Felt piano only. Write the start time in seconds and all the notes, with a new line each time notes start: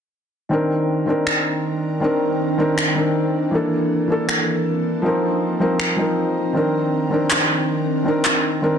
0.49 D#3 C4 D4
0.53 A#4
1.06 D#3 C4 D4 A#4
2.00 D#3 C4 D4 A#4
2.58 D#3 C4 D4 A#4
2.94 D#3 C4 D4 A#4
3.51 E3 A#3 D4
3.55 A4
4.08 E3 A#3 D4
4.12 A4
5.02 F3 C4 D#4
5.06 A#4
5.60 F3 C4 D#4 A#4
5.96 F3 C4 D#4 A#4
6.53 D#3 C4 D4 A#4
7.10 D#3 C4 D4 A#4
8.04 D#3 C4 D4 A#4
8.62 D#3 C4 D4 A#4